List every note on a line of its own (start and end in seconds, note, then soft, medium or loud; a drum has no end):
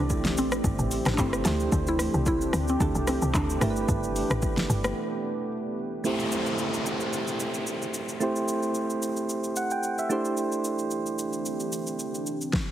0.00 0.38 C2 medium
0.00 6.01 E3 medium
0.00 1.15 A3 medium
0.00 1.41 A3 medium
0.00 1.15 C4 medium
0.00 3.57 C4 medium
0.00 0.39 D4 loud
0.00 1.15 E4 medium
0.00 1.16 G4 medium
0.00 1.41 G4 loud
0.00 1.16 D5 medium
0.10 kick medium
0.10 shaker medium
0.25 snare medium
0.25 shaker medium
0.37 0.61 A1 loud
0.37 1.15 C4 medium
0.37 open hi-hat medium
0.37 shaker medium
0.52 cross-stick loud
0.52 shaker medium
0.64 0.77 G1 medium
0.64 kick loud
0.64 shaker medium
0.79 1.02 A1 medium
0.79 shaker medium
0.91 open hi-hat medium
0.91 shaker loud
1.06 1.17 A1 medium
1.06 cross-stick loud
1.06 snare medium
1.06 shaker medium
1.14 1.19 D4 medium
1.18 1.42 G1 medium
1.18 1.43 A3 medium
1.18 1.45 C4 soft
1.18 1.47 C4 loud
1.18 1.45 E4 soft
1.18 1.45 G4 soft
1.18 1.46 C5 medium
1.18 kick medium
1.18 clap medium
1.18 shaker medium
1.33 cross-stick medium
1.33 shaker medium
1.44 1.69 D2 loud
1.44 2.77 A3 medium
1.44 1.89 A3 medium
1.44 2.78 D4 medium
1.44 3.59 D4 medium
1.44 2.78 E4 medium
1.44 6.01 G4 medium
1.44 2.78 G4 medium
1.44 2.79 C5 medium
1.44 snare medium
1.44 open hi-hat medium
1.44 shaker loud
1.60 shaker medium
1.72 2.09 D2 loud
1.72 kick loud
1.72 shaker medium
1.87 2.24 E4 loud
1.87 shaker soft
1.99 cross-stick medium
1.99 open hi-hat medium
1.99 shaker loud
2.14 2.48 C2 medium
2.14 shaker soft
2.26 2.70 E4 loud
2.26 kick medium
2.26 shaker medium
2.41 shaker medium
2.53 2.77 D2 loud
2.53 cross-stick medium
2.53 open hi-hat medium
2.53 shaker loud
2.68 2.81 C4 medium
2.68 shaker medium
2.80 2.93 D2 loud
2.80 3.59 A3 soft
2.80 3.60 D4 soft
2.80 3.06 D4 medium
2.80 3.61 E4 soft
2.80 3.62 G4 soft
2.80 3.62 A4 medium
2.80 kick loud
2.80 shaker medium
2.95 3.19 C2 medium
2.95 shaker medium
3.07 3.33 C4 medium
3.07 cross-stick medium
3.07 open hi-hat medium
3.07 shaker loud
3.22 3.33 C2 medium
3.22 shaker medium
3.34 3.58 D2 loud
3.34 3.48 D4 medium
3.34 kick medium
3.34 clap medium
3.34 shaker medium
3.50 shaker medium
3.61 3.85 G1 loud
3.61 5.73 A3 medium
3.61 6.02 A3 medium
3.61 5.74 A3 medium
3.61 6.02 B3 medium
3.61 5.74 D4 medium
3.61 5.74 E4 medium
3.61 5.74 G4 medium
3.61 3.70 A#4 medium
3.61 cross-stick loud
3.61 open hi-hat medium
3.61 shaker loud
3.70 5.78 B4 medium
3.76 shaker medium
3.88 4.25 G1 loud
3.88 kick loud
3.88 shaker medium
4.04 shaker soft
4.16 open hi-hat medium
4.16 shaker loud
4.30 4.64 A1 medium
4.30 cross-stick loud
4.30 shaker soft
4.42 kick medium
4.42 shaker medium
4.57 snare medium
4.57 shaker medium
4.70 4.93 G1 loud
4.70 open hi-hat medium
4.70 shaker medium
4.84 cross-stick loud
4.84 shaker medium
6.04 8.16 A3 medium
6.04 8.17 C4 medium
6.04 8.17 E4 medium
6.04 8.18 G4 medium
6.04 8.18 C5 medium
6.04 downlifter medium
6.04 shaker medium
6.20 shaker soft
6.32 shaker medium
6.46 shaker soft
6.58 shaker medium
6.74 shaker medium
6.86 shaker medium
7.00 shaker medium
7.13 shaker medium
7.28 shaker medium
7.40 shaker medium
7.54 shaker medium
7.67 shaker medium
7.82 shaker soft
7.94 shaker medium
8.09 shaker soft
8.20 10.06 A3 medium
8.20 10.06 C4 medium
8.20 10.07 E4 medium
8.20 10.07 G4 medium
8.20 10.07 C5 medium
8.20 shaker medium
8.36 shaker soft
8.48 shaker medium
8.63 shaker soft
8.75 shaker medium
8.90 shaker medium
9.02 shaker medium
9.17 shaker medium
9.29 shaker medium
9.44 shaker medium
9.56 9.71 F#5 medium
9.56 shaker loud
9.71 9.97 G5 medium
9.71 shaker medium
9.83 shaker medium
9.98 10.24 E5 medium
9.98 shaker medium
10.09 12.22 A3 medium
10.09 12.22 D4 medium
10.09 12.23 E4 medium
10.09 12.23 G4 medium
10.09 12.23 C5 medium
10.09 shaker medium
10.25 shaker soft
10.37 12.51 E3 medium
10.37 12.24 C4 medium
10.37 12.24 D4 medium
10.37 12.51 G4 medium
10.37 shaker medium
10.52 shaker soft
10.64 shaker medium
10.79 shaker soft
10.91 shaker medium
11.06 shaker medium
11.19 shaker medium
11.33 shaker soft
11.46 shaker medium
11.60 shaker medium
11.72 shaker loud
11.87 shaker medium
11.99 shaker medium
12.15 shaker medium
12.27 shaker medium
12.41 shaker medium
12.53 kick loud
12.53 snare medium